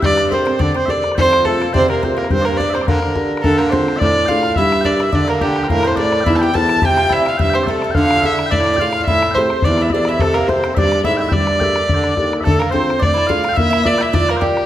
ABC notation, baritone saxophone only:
X:1
M:4/4
L:1/8
Q:"Swing" 1/4=213
K:Gdor
V:1 name="Baritone saxophone" clef=bass
G,,4 D, z3 | F,,4 C, C,3 | G,,4 D, D,3 | D,4 A,,2 A,,2 |
G,,4 D,2 D,2 | A,,4 E,,2 E,,2 | C,4 G,,2 C,2 | D,4 A,,2 A,,2 |
A,,4 E,,2 E,,2 | C,4 G,,2 _A,,2 | G,,4 D,2 _E,,2 | z8 |
z8 |]